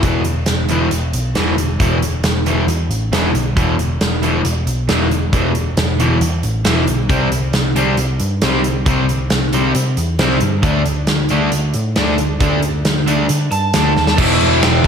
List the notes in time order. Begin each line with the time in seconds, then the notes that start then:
0.03 E1 E2 B2 E3, kick, closed hi-hat
0.24 E1, closed hi-hat
0.46 E1, snare, closed hi-hat
0.69 E2 B2 E3, closed hi-hat
0.91 E1, closed hi-hat
1.13 B1, closed hi-hat
1.35 E1 E2 B2 E3, snare, closed hi-hat
1.58 closed hi-hat
1.80 E1 E2 B2 E3, kick, closed hi-hat
2.02 closed hi-hat
2.23 E1, snare, closed hi-hat
2.46 E2 B2 E3, closed hi-hat
2.67 E2, closed hi-hat
2.89 A1, closed hi-hat
3.11 E1 E2 B2 E3, snare, closed hi-hat
3.34 B1, closed hi-hat
3.57 E1 E2 B2 E3, kick, closed hi-hat
3.78 E1, closed hi-hat
4.01 E1, snare, closed hi-hat
4.23 E2 B2 E3, closed hi-hat
4.45 E1, closed hi-hat
4.67 B1, closed hi-hat
4.89 E1 E2 B2 E3, snare, closed hi-hat
5.11 closed hi-hat
5.33 E1 E2 B2 E3, kick, closed hi-hat
5.55 closed hi-hat
5.77 E1, snare, closed hi-hat
6.00 E2 B2 E3, closed hi-hat
6.21 E2, closed hi-hat
6.43 A1, closed hi-hat
6.65 E1 E2 B2 E3, snare, closed hi-hat
6.87 B1, closed hi-hat
7.09 C2 C3 G3 C4, kick, closed hi-hat
7.31 C2, closed hi-hat
7.53 C2, snare, closed hi-hat
7.76 C3 G3 C4, closed hi-hat
7.97 C2, closed hi-hat
8.20 G2, closed hi-hat
8.42 C2 C3 G3 C4, snare, closed hi-hat
8.64 closed hi-hat
8.86 C2 C3 G3 C4, kick, closed hi-hat
9.09 closed hi-hat
9.30 C2, snare, closed hi-hat
9.53 C3 G3 C4, closed hi-hat
9.75 C3, closed hi-hat
9.97 E2, closed hi-hat
10.19 C2 C3 G3 C4, snare, closed hi-hat
10.40 G2, closed hi-hat
10.63 D2 D3 A3 D4, kick, closed hi-hat
10.86 D2, closed hi-hat
11.07 D2, snare, closed hi-hat
11.29 D3 A3 D4, closed hi-hat
11.52 D2, closed hi-hat
11.74 A2, closed hi-hat
11.96 D2 D3 A3 D4, snare, closed hi-hat
12.18 closed hi-hat
12.40 D2 D3 A3 D4, kick, closed hi-hat
12.63 closed hi-hat
12.85 D2, snare, closed hi-hat
13.07 D3 A3 D4, closed hi-hat
13.29 D3, closed hi-hat
13.51 G2 A5, closed hi-hat
13.74 D2 D3 A3 D4, snare, closed hi-hat
13.96 D#2, snare
14.07 snare
14.17 E1 E2 B2 E3 E5, kick, crash
14.41 E1, crash
14.63 E1 G5, snare, crash
14.84 E3